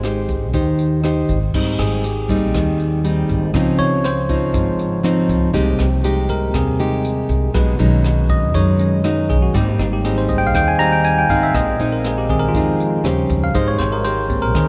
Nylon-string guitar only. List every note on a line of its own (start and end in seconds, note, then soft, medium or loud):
0.00 0.51 G#3 medium
0.00 0.50 D#4 medium
0.05 0.50 G4 soft
0.05 0.50 C5 medium
0.53 1.51 D#3 soft
0.53 1.00 D#4 medium
0.53 1.00 G4 medium
0.53 1.00 C5 medium
1.04 1.38 D#4 medium
1.04 1.38 G4 medium
1.04 1.38 C5 medium
1.54 2.52 G#2 medium
1.54 2.04 G3 medium
1.54 2.04 C4 medium
1.54 2.04 D#4 medium
2.29 3.00 G3 medium
2.29 3.00 C4 medium
2.29 3.01 D#4 medium
2.54 3.52 D#3 medium
3.05 3.50 G3 medium
3.05 3.51 C4 medium
3.05 3.51 D#4 medium
3.55 4.52 C#3 medium
3.55 4.04 F3 medium
3.55 4.04 C4 medium
3.55 4.05 D#4 medium
4.29 5.00 F3 medium
4.29 5.00 C4 medium
4.29 5.01 D#4 medium
4.54 5.52 G#2 medium
5.04 5.50 F3 medium
5.04 5.50 C4 medium
5.04 5.50 D#4 medium
5.53 6.51 C3 medium
5.53 5.86 G#3 medium
5.53 5.86 D#4 medium
5.53 5.87 G4 medium
6.04 6.54 G#3 soft
6.04 6.54 D#4 medium
6.04 6.54 G4 medium
6.54 7.52 C3 medium
6.79 7.53 G#3 medium
6.79 7.53 D#4 medium
6.79 7.53 G4 medium
7.54 8.52 B2 medium
7.54 7.75 F#3 medium
7.54 7.75 G#3 medium
7.54 7.75 D#4 medium
7.79 8.50 F#3 medium
7.79 8.50 G#3 medium
7.79 8.51 D#4 medium
8.54 9.52 F#2 medium
8.54 9.00 F#3 medium
8.54 9.01 G#3 soft
8.54 9.01 D#4 medium
9.04 9.36 F#3 medium
9.04 9.37 G#3 medium
9.04 9.37 D#4 medium
9.55 10.52 G#2 medium
9.55 9.87 G3 medium
9.55 9.87 C4 medium
9.55 9.87 D#4 medium
10.05 10.54 G3 soft
10.05 10.55 C4 medium
10.05 10.55 D#4 medium
10.54 11.52 D#3 medium
10.80 11.26 G3 medium
10.80 11.26 C4 medium
10.80 11.26 D#4 medium
11.30 11.76 G#3 medium
11.30 11.76 C4 medium
11.30 11.76 D#4 medium
11.54 12.52 A#2 medium
11.80 12.51 G#3 medium
11.80 12.51 C4 medium
11.80 12.51 D#4 medium
12.55 13.02 F3 medium
12.55 13.01 G#3 medium
12.55 13.01 C4 medium
12.55 13.01 D#4 medium
13.04 13.51 C#4 medium
13.04 13.51 G4 medium
13.04 13.51 C5 medium
13.54 14.52 G#3 medium
13.54 14.01 D#4 medium
13.54 14.01 G4 medium
13.54 14.01 C5 medium
14.04 14.54 D#4 medium
14.04 14.55 G4 medium
14.04 14.55 C5 medium
14.54 14.68 D#3 medium